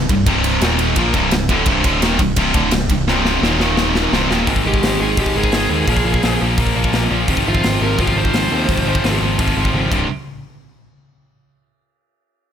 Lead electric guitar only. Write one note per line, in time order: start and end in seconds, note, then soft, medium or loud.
4.67 5.00 G4 medium
5.01 5.18 G#4 medium
5.19 5.36 G4 medium
5.36 6.38 G#4 medium
7.48 7.81 F4 medium
7.81 7.98 A#4 medium
8.01 8.17 F4 loud
8.18 9.19 C5 loud